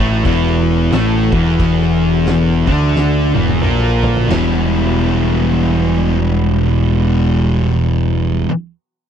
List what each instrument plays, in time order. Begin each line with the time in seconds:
Already playing: picked electric bass A1, string machine E3 F#4 A4
0.00 distorted electric guitar A2 A3
0.25 picked electric bass E1, distorted electric guitar E2 E3, kick, crash
0.91 picked electric bass A1, distorted electric guitar A2 A3, snare, crash
1.32 picked electric bass E1, distorted electric guitar E2 E3, kick
1.60 kick, crash
1.81 snare
2.27 snare, crash
2.67 picked electric bass D2, distorted electric guitar D3 D4, kick
2.96 snare
3.34 picked electric bass E1, distorted electric guitar E2 E3, high tom
3.48 high tom
3.61 picked electric bass A#1, distorted electric guitar A#2 A#3, mid tom
4.03 floor tom
4.17 floor tom
4.28 picked electric bass E1, distorted electric guitar E2 B2 E3 G3, string machine E3 B3 F#4, floor tom, crash
4.32 distorted electric guitar B3 E4, snare